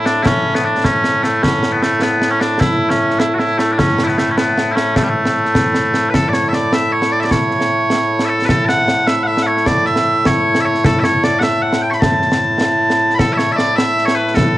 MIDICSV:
0, 0, Header, 1, 3, 480
1, 0, Start_track
1, 0, Key_signature, 3, "major"
1, 0, Tempo, 392157
1, 311, Time_signature, 6, 3, 24, 8
1, 17845, End_track
2, 0, Start_track
2, 0, Title_t, "Bagpipes"
2, 0, Program_c, 0, 109
2, 0, Note_on_c, 0, 45, 89
2, 0, Note_on_c, 0, 57, 89
2, 0, Note_on_c, 0, 64, 89
2, 71, Note_on_c, 0, 62, 95
2, 278, Note_off_c, 0, 62, 0
2, 278, Note_off_c, 0, 64, 0
2, 278, Note_on_c, 0, 64, 96
2, 319, Note_off_c, 0, 64, 0
2, 319, Note_on_c, 0, 61, 96
2, 669, Note_off_c, 0, 61, 0
2, 669, Note_on_c, 0, 59, 95
2, 790, Note_off_c, 0, 59, 0
2, 790, Note_on_c, 0, 62, 90
2, 1034, Note_off_c, 0, 62, 0
2, 1034, Note_on_c, 0, 61, 90
2, 1505, Note_off_c, 0, 57, 0
2, 1505, Note_off_c, 0, 61, 0
2, 1505, Note_on_c, 0, 57, 84
2, 1745, Note_off_c, 0, 57, 0
2, 1745, Note_on_c, 0, 61, 92
2, 2105, Note_off_c, 0, 61, 0
2, 2105, Note_on_c, 0, 59, 86
2, 2228, Note_off_c, 0, 59, 0
2, 2228, Note_on_c, 0, 57, 84
2, 2465, Note_off_c, 0, 57, 0
2, 2465, Note_on_c, 0, 59, 88
2, 2818, Note_off_c, 0, 59, 0
2, 2818, Note_on_c, 0, 61, 91
2, 2942, Note_off_c, 0, 61, 0
2, 2942, Note_on_c, 0, 62, 93
2, 3181, Note_off_c, 0, 62, 0
2, 3181, Note_on_c, 0, 64, 92
2, 3542, Note_off_c, 0, 64, 0
2, 3542, Note_on_c, 0, 61, 83
2, 3662, Note_off_c, 0, 61, 0
2, 3662, Note_on_c, 0, 61, 88
2, 3909, Note_off_c, 0, 61, 0
2, 3909, Note_on_c, 0, 64, 92
2, 4086, Note_off_c, 0, 64, 0
2, 4086, Note_on_c, 0, 66, 95
2, 4141, Note_off_c, 0, 66, 0
2, 4141, Note_on_c, 0, 64, 95
2, 4381, Note_off_c, 0, 64, 0
2, 4381, Note_on_c, 0, 57, 84
2, 4553, Note_off_c, 0, 57, 0
2, 4553, Note_on_c, 0, 62, 70
2, 4633, Note_off_c, 0, 62, 0
2, 4633, Note_on_c, 0, 61, 89
2, 4946, Note_off_c, 0, 61, 0
2, 4946, Note_on_c, 0, 64, 83
2, 4992, Note_off_c, 0, 64, 0
2, 4992, Note_on_c, 0, 59, 83
2, 5109, Note_off_c, 0, 59, 0
2, 5109, Note_on_c, 0, 57, 80
2, 5267, Note_off_c, 0, 57, 0
2, 5267, Note_on_c, 0, 61, 64
2, 5346, Note_off_c, 0, 61, 0
2, 5346, Note_on_c, 0, 59, 83
2, 5774, Note_off_c, 0, 59, 0
2, 5774, Note_on_c, 0, 64, 81
2, 5817, Note_off_c, 0, 64, 0
2, 5817, Note_on_c, 0, 61, 81
2, 6071, Note_off_c, 0, 61, 0
2, 6071, Note_on_c, 0, 57, 75
2, 6158, Note_off_c, 0, 57, 0
2, 6158, Note_on_c, 0, 55, 61
2, 6231, Note_off_c, 0, 55, 0
2, 6231, Note_on_c, 0, 57, 80
2, 7462, Note_off_c, 0, 57, 0
2, 7462, Note_on_c, 0, 71, 80
2, 7516, Note_off_c, 0, 71, 0
2, 7516, Note_on_c, 0, 69, 80
2, 7691, Note_off_c, 0, 69, 0
2, 7691, Note_on_c, 0, 74, 64
2, 7749, Note_off_c, 0, 74, 0
2, 7749, Note_on_c, 0, 73, 79
2, 7937, Note_off_c, 0, 73, 0
2, 7937, Note_on_c, 0, 76, 65
2, 7997, Note_off_c, 0, 76, 0
2, 7997, Note_on_c, 0, 74, 85
2, 8233, Note_off_c, 0, 74, 0
2, 8233, Note_on_c, 0, 76, 93
2, 8470, Note_off_c, 0, 76, 0
2, 8470, Note_on_c, 0, 73, 94
2, 8713, Note_off_c, 0, 73, 0
2, 8713, Note_on_c, 0, 74, 90
2, 8810, Note_off_c, 0, 74, 0
2, 8810, Note_on_c, 0, 76, 71
2, 8858, Note_off_c, 0, 76, 0
2, 8858, Note_on_c, 0, 74, 71
2, 8946, Note_off_c, 0, 74, 0
2, 8946, Note_on_c, 0, 73, 90
2, 10097, Note_off_c, 0, 73, 0
2, 10097, Note_on_c, 0, 76, 83
2, 10143, Note_off_c, 0, 76, 0
2, 10143, Note_on_c, 0, 69, 83
2, 10344, Note_off_c, 0, 69, 0
2, 10344, Note_on_c, 0, 71, 87
2, 10389, Note_off_c, 0, 71, 0
2, 10389, Note_on_c, 0, 69, 87
2, 10590, Note_off_c, 0, 69, 0
2, 10590, Note_on_c, 0, 81, 104
2, 10630, Note_off_c, 0, 81, 0
2, 10630, Note_on_c, 0, 78, 104
2, 11105, Note_off_c, 0, 78, 0
2, 11105, Note_on_c, 0, 76, 96
2, 11300, Note_off_c, 0, 76, 0
2, 11300, Note_on_c, 0, 78, 95
2, 11347, Note_off_c, 0, 78, 0
2, 11347, Note_on_c, 0, 76, 95
2, 11533, Note_off_c, 0, 76, 0
2, 11534, Note_on_c, 0, 78, 92
2, 11587, Note_off_c, 0, 78, 0
2, 11587, Note_on_c, 0, 73, 92
2, 11826, Note_off_c, 0, 73, 0
2, 11826, Note_on_c, 0, 74, 92
2, 12066, Note_off_c, 0, 74, 0
2, 12066, Note_on_c, 0, 76, 101
2, 12560, Note_off_c, 0, 76, 0
2, 12560, Note_on_c, 0, 73, 98
2, 12980, Note_off_c, 0, 73, 0
2, 12980, Note_on_c, 0, 76, 99
2, 13034, Note_off_c, 0, 76, 0
2, 13034, Note_on_c, 0, 73, 99
2, 13276, Note_off_c, 0, 73, 0
2, 13276, Note_on_c, 0, 69, 90
2, 13457, Note_off_c, 0, 69, 0
2, 13457, Note_on_c, 0, 76, 94
2, 13506, Note_off_c, 0, 76, 0
2, 13506, Note_on_c, 0, 73, 94
2, 13752, Note_off_c, 0, 73, 0
2, 13752, Note_on_c, 0, 74, 90
2, 13939, Note_off_c, 0, 74, 0
2, 13939, Note_on_c, 0, 78, 101
2, 13983, Note_off_c, 0, 78, 0
2, 13983, Note_on_c, 0, 76, 101
2, 14222, Note_off_c, 0, 76, 0
2, 14222, Note_on_c, 0, 78, 97
2, 14464, Note_off_c, 0, 78, 0
2, 14464, Note_on_c, 0, 79, 105
2, 14568, Note_off_c, 0, 79, 0
2, 14568, Note_on_c, 0, 85, 78
2, 14610, Note_off_c, 0, 85, 0
2, 14610, Note_on_c, 0, 83, 78
2, 14690, Note_off_c, 0, 83, 0
2, 14690, Note_on_c, 0, 81, 102
2, 16091, Note_off_c, 0, 81, 0
2, 16091, Note_on_c, 0, 83, 86
2, 16143, Note_on_c, 0, 69, 86
2, 16144, Note_off_c, 0, 83, 0
2, 16318, Note_off_c, 0, 69, 0
2, 16318, Note_on_c, 0, 76, 98
2, 16368, Note_off_c, 0, 76, 0
2, 16368, Note_on_c, 0, 73, 98
2, 16548, Note_off_c, 0, 73, 0
2, 16548, Note_on_c, 0, 76, 100
2, 16599, Note_off_c, 0, 76, 0
2, 16599, Note_on_c, 0, 74, 100
2, 16839, Note_off_c, 0, 74, 0
2, 16839, Note_on_c, 0, 76, 107
2, 17199, Note_off_c, 0, 76, 0
2, 17199, Note_on_c, 0, 73, 104
2, 17320, Note_off_c, 0, 73, 0
2, 17320, Note_on_c, 0, 71, 92
2, 17560, Note_off_c, 0, 71, 0
2, 17560, Note_on_c, 0, 69, 77
2, 17845, Note_off_c, 0, 45, 0
2, 17845, Note_off_c, 0, 69, 0
2, 17845, End_track
3, 0, Start_track
3, 0, Title_t, "Drums"
3, 72, Note_on_c, 9, 38, 73
3, 195, Note_off_c, 9, 38, 0
3, 312, Note_on_c, 9, 35, 58
3, 312, Note_on_c, 9, 38, 96
3, 435, Note_off_c, 9, 35, 0
3, 435, Note_off_c, 9, 38, 0
3, 675, Note_on_c, 9, 38, 73
3, 797, Note_off_c, 9, 38, 0
3, 917, Note_on_c, 9, 38, 26
3, 1034, Note_off_c, 9, 38, 0
3, 1034, Note_on_c, 9, 35, 49
3, 1034, Note_on_c, 9, 38, 85
3, 1156, Note_off_c, 9, 35, 0
3, 1156, Note_off_c, 9, 38, 0
3, 1273, Note_on_c, 9, 38, 70
3, 1396, Note_off_c, 9, 38, 0
3, 1514, Note_on_c, 9, 38, 63
3, 1637, Note_off_c, 9, 38, 0
3, 1752, Note_on_c, 9, 35, 55
3, 1752, Note_on_c, 9, 38, 85
3, 1874, Note_off_c, 9, 35, 0
3, 1874, Note_off_c, 9, 38, 0
3, 1993, Note_on_c, 9, 38, 69
3, 2115, Note_off_c, 9, 38, 0
3, 2234, Note_on_c, 9, 38, 78
3, 2357, Note_off_c, 9, 38, 0
3, 2474, Note_on_c, 9, 38, 89
3, 2596, Note_off_c, 9, 38, 0
3, 2714, Note_on_c, 9, 38, 77
3, 2836, Note_off_c, 9, 38, 0
3, 2953, Note_on_c, 9, 38, 80
3, 3075, Note_off_c, 9, 38, 0
3, 3193, Note_on_c, 9, 35, 61
3, 3193, Note_on_c, 9, 38, 100
3, 3316, Note_off_c, 9, 35, 0
3, 3316, Note_off_c, 9, 38, 0
3, 3553, Note_on_c, 9, 38, 76
3, 3676, Note_off_c, 9, 38, 0
3, 3797, Note_on_c, 9, 38, 27
3, 3914, Note_off_c, 9, 38, 0
3, 3914, Note_on_c, 9, 38, 100
3, 4037, Note_off_c, 9, 38, 0
3, 4155, Note_on_c, 9, 38, 78
3, 4278, Note_off_c, 9, 38, 0
3, 4396, Note_on_c, 9, 38, 76
3, 4518, Note_off_c, 9, 38, 0
3, 4638, Note_on_c, 9, 35, 64
3, 4638, Note_on_c, 9, 38, 94
3, 4758, Note_off_c, 9, 38, 0
3, 4758, Note_on_c, 9, 38, 31
3, 4760, Note_off_c, 9, 35, 0
3, 4877, Note_off_c, 9, 38, 0
3, 4877, Note_on_c, 9, 38, 78
3, 4998, Note_off_c, 9, 38, 0
3, 4998, Note_on_c, 9, 38, 29
3, 5119, Note_off_c, 9, 38, 0
3, 5119, Note_on_c, 9, 38, 79
3, 5241, Note_off_c, 9, 38, 0
3, 5357, Note_on_c, 9, 38, 94
3, 5479, Note_off_c, 9, 38, 0
3, 5601, Note_on_c, 9, 38, 81
3, 5723, Note_off_c, 9, 38, 0
3, 5837, Note_on_c, 9, 38, 78
3, 5960, Note_off_c, 9, 38, 0
3, 6073, Note_on_c, 9, 35, 58
3, 6073, Note_on_c, 9, 38, 105
3, 6196, Note_off_c, 9, 35, 0
3, 6196, Note_off_c, 9, 38, 0
3, 6431, Note_on_c, 9, 38, 73
3, 6554, Note_off_c, 9, 38, 0
3, 6674, Note_on_c, 9, 38, 28
3, 6792, Note_off_c, 9, 38, 0
3, 6792, Note_on_c, 9, 35, 52
3, 6792, Note_on_c, 9, 38, 98
3, 6914, Note_off_c, 9, 35, 0
3, 6914, Note_off_c, 9, 38, 0
3, 7029, Note_on_c, 9, 38, 72
3, 7152, Note_off_c, 9, 38, 0
3, 7269, Note_on_c, 9, 38, 69
3, 7391, Note_off_c, 9, 38, 0
3, 7514, Note_on_c, 9, 35, 59
3, 7514, Note_on_c, 9, 38, 99
3, 7636, Note_off_c, 9, 35, 0
3, 7636, Note_off_c, 9, 38, 0
3, 7752, Note_on_c, 9, 38, 74
3, 7874, Note_off_c, 9, 38, 0
3, 7990, Note_on_c, 9, 38, 71
3, 8113, Note_off_c, 9, 38, 0
3, 8232, Note_on_c, 9, 38, 89
3, 8355, Note_off_c, 9, 38, 0
3, 8592, Note_on_c, 9, 38, 69
3, 8714, Note_off_c, 9, 38, 0
3, 8831, Note_on_c, 9, 38, 25
3, 8949, Note_off_c, 9, 38, 0
3, 8949, Note_on_c, 9, 35, 56
3, 8949, Note_on_c, 9, 38, 82
3, 9071, Note_off_c, 9, 35, 0
3, 9071, Note_off_c, 9, 38, 0
3, 9192, Note_on_c, 9, 38, 26
3, 9312, Note_off_c, 9, 38, 0
3, 9312, Note_on_c, 9, 38, 65
3, 9434, Note_off_c, 9, 38, 0
3, 9672, Note_on_c, 9, 38, 91
3, 9795, Note_off_c, 9, 38, 0
3, 10030, Note_on_c, 9, 38, 73
3, 10152, Note_off_c, 9, 38, 0
3, 10270, Note_on_c, 9, 38, 26
3, 10392, Note_off_c, 9, 38, 0
3, 10392, Note_on_c, 9, 35, 58
3, 10392, Note_on_c, 9, 38, 98
3, 10515, Note_off_c, 9, 35, 0
3, 10515, Note_off_c, 9, 38, 0
3, 10635, Note_on_c, 9, 38, 74
3, 10757, Note_off_c, 9, 38, 0
3, 10871, Note_on_c, 9, 38, 79
3, 10993, Note_off_c, 9, 38, 0
3, 11109, Note_on_c, 9, 38, 91
3, 11231, Note_off_c, 9, 38, 0
3, 11472, Note_on_c, 9, 38, 75
3, 11595, Note_off_c, 9, 38, 0
3, 11714, Note_on_c, 9, 38, 25
3, 11828, Note_off_c, 9, 38, 0
3, 11828, Note_on_c, 9, 35, 60
3, 11828, Note_on_c, 9, 38, 88
3, 11951, Note_off_c, 9, 35, 0
3, 11951, Note_off_c, 9, 38, 0
3, 12068, Note_on_c, 9, 38, 26
3, 12190, Note_off_c, 9, 38, 0
3, 12190, Note_on_c, 9, 38, 71
3, 12313, Note_off_c, 9, 38, 0
3, 12551, Note_on_c, 9, 35, 55
3, 12551, Note_on_c, 9, 38, 94
3, 12673, Note_off_c, 9, 35, 0
3, 12673, Note_off_c, 9, 38, 0
3, 12911, Note_on_c, 9, 38, 80
3, 13033, Note_off_c, 9, 38, 0
3, 13154, Note_on_c, 9, 38, 27
3, 13274, Note_off_c, 9, 38, 0
3, 13274, Note_on_c, 9, 35, 68
3, 13274, Note_on_c, 9, 38, 105
3, 13396, Note_off_c, 9, 35, 0
3, 13396, Note_off_c, 9, 38, 0
3, 13510, Note_on_c, 9, 38, 85
3, 13632, Note_off_c, 9, 38, 0
3, 13754, Note_on_c, 9, 38, 90
3, 13876, Note_off_c, 9, 38, 0
3, 13993, Note_on_c, 9, 38, 103
3, 14115, Note_off_c, 9, 38, 0
3, 14353, Note_on_c, 9, 38, 83
3, 14475, Note_off_c, 9, 38, 0
3, 14596, Note_on_c, 9, 38, 32
3, 14713, Note_off_c, 9, 38, 0
3, 14713, Note_on_c, 9, 35, 71
3, 14713, Note_on_c, 9, 38, 103
3, 14835, Note_off_c, 9, 35, 0
3, 14835, Note_off_c, 9, 38, 0
3, 14954, Note_on_c, 9, 38, 29
3, 15076, Note_off_c, 9, 38, 0
3, 15076, Note_on_c, 9, 38, 81
3, 15199, Note_off_c, 9, 38, 0
3, 15434, Note_on_c, 9, 38, 100
3, 15556, Note_off_c, 9, 38, 0
3, 15791, Note_on_c, 9, 38, 73
3, 15914, Note_off_c, 9, 38, 0
3, 16034, Note_on_c, 9, 38, 28
3, 16150, Note_off_c, 9, 38, 0
3, 16150, Note_on_c, 9, 35, 57
3, 16150, Note_on_c, 9, 38, 88
3, 16272, Note_off_c, 9, 35, 0
3, 16272, Note_off_c, 9, 38, 0
3, 16390, Note_on_c, 9, 38, 76
3, 16512, Note_off_c, 9, 38, 0
3, 16629, Note_on_c, 9, 38, 83
3, 16752, Note_off_c, 9, 38, 0
3, 16871, Note_on_c, 9, 38, 98
3, 16994, Note_off_c, 9, 38, 0
3, 17111, Note_on_c, 9, 38, 32
3, 17232, Note_off_c, 9, 38, 0
3, 17232, Note_on_c, 9, 38, 85
3, 17354, Note_off_c, 9, 38, 0
3, 17471, Note_on_c, 9, 38, 30
3, 17587, Note_off_c, 9, 38, 0
3, 17587, Note_on_c, 9, 35, 72
3, 17587, Note_on_c, 9, 38, 102
3, 17709, Note_off_c, 9, 35, 0
3, 17709, Note_off_c, 9, 38, 0
3, 17845, End_track
0, 0, End_of_file